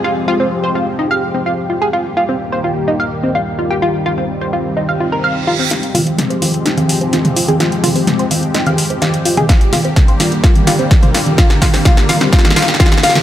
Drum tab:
HH |--------------------------------|--------------------------------|--------------------------------|x-x-o-x-x-x-o-x-x-x-o-x-x-x-o-x-|
SD |--------------------------------|--------------------------------|--------------------------------|o-------o-------o-------o-------|
T2 |--------------------------------|--------------------------------|--------------------------------|----o---o-----------------o-----|
CG |--------------------------------|--------------------------------|--------------------------------|----o-------o-----o-----o-----o-|
BD |--------------------------------|--------------------------------|--------------------------------|--------------------------------|

HH |x-x-o-o-x-x-o-x-x-x-o-x-x-x-o-x-|x-x-o-x-x-x-o-x-x-x-o-x-x-x-o-x-|x-x-o-o-x-x-o-x-x-x-o-x-x-x-o-x-|
SD |o-------o-------o-------o-------|o---o---o---o---o---o---o---o---|o-o-o-o-o-o-o-o-ooooooooooooooo-|
T2 |----o---o---------------------o-|----o---o-----------------o-----|----o---o---------------------o-|
CG |----o-------o-----o-----o-----o-|----o-------o-----o-----o-----o-|----o-------o-----o-----o-----o-|
BD |--------------------------------|o-------o-------o-------o-------|o---o---o-------o-------o-------|